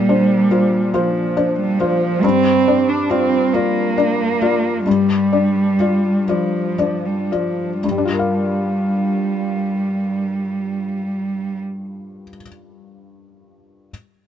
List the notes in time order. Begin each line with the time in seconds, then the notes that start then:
Already playing: A#2 G3
0.09 D4 C5
0.51 F4 C5
0.94 F3 F4 C5
1.37 D4 C5
1.60 G3
1.79 F3 F4 C5
2.23 G2 C4
2.68 D4 D5
2.89 D4
3.10 C4 F4 D5
3.54 A#3 F4 D5
3.98 D4 D5
4.42 F4 D5
4.87 G2 G3
5.33 D4 D5
5.80 F4 D5
6.28 F3 F4 D5
6.79 D4 D5
7.05 G3
7.32 F3 F4 D5
7.83 G2 G3
7.91 G3
7.98 D4
8.05 F4
8.12 A#4
8.19 F5